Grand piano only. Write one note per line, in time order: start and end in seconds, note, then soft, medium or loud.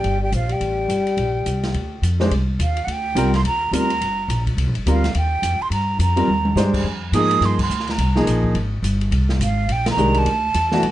2.20 2.30 G#3 medium
2.20 2.30 D4 medium
2.20 2.31 G4 medium
2.20 2.31 C5 medium
3.15 3.31 G3 medium
3.15 3.31 C4 medium
3.15 3.32 F4 medium
3.15 3.32 A#4 medium
3.73 3.88 G3 medium
3.73 3.88 C4 medium
3.73 3.88 F4 medium
3.73 3.89 A#4 medium
4.87 5.02 G3 medium
4.87 5.02 C4 medium
4.87 5.02 F4 medium
4.87 5.02 A#4 medium
6.16 6.27 G3 medium
6.16 6.27 C4 medium
6.16 6.27 F4 medium
6.16 6.27 A#4 medium
6.56 6.85 G#3 medium
6.56 6.85 D4 medium
6.56 6.85 G4 medium
6.56 6.85 C5 medium
7.14 7.56 F3 medium
7.14 7.56 A#3 medium
7.14 7.56 D#4 medium
7.14 7.56 G#4 medium
8.15 8.53 F3 medium
8.15 8.53 A#3 medium
8.15 8.53 D#4 medium
8.15 8.54 G#4 medium
9.97 10.26 D#3 medium
9.97 10.26 G#3 medium
9.97 10.26 D4 medium
9.97 10.26 G4 medium
10.72 10.82 E3 medium
10.72 10.82 A3 medium
10.72 10.82 D4 medium
10.72 10.82 F#4 medium